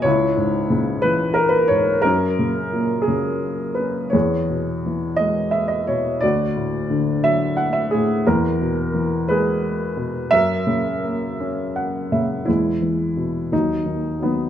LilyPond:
<<
  \new Staff \with { instrumentName = "Upright piano" } { \time 6/8 \key e \lydian \tempo 4. = 58 << { cis''4. b'8 ais'16 b'16 cis''8 | ais'4. gis'4 b'8 | cis''4. dis''8 e''16 dis''16 cis''8 | d''4. e''8 fis''16 e''16 gis'8 |
ais'4 r8 b'4. | e''2 fis''8 e''8 | e'4. dis'4 b8 | } \\ { e'4. r4. | cis'4. r4. | gis'4. r4. | fis'4. r4. |
e'4. gis'4. | ais'2 r4 | gis4. fis4 dis8 | } >> }
  \new Staff \with { instrumentName = "Upright piano" } { \clef bass \time 6/8 \key e \lydian cis,8 gis,8 cis8 e4 gis,8 | fis,8 cis8 ais,8 cis4 cis'8 | e,8 b,8 e8 gis4 b,8 | d,8 a,8 d8 fis4 a,8 |
e,8 b,8 e8 gis4 b,8 | fis,8 cis8 ais8 cis'4 cis8 | e,8 e8 b,8 dis,8 dis8 fis8 | }
>>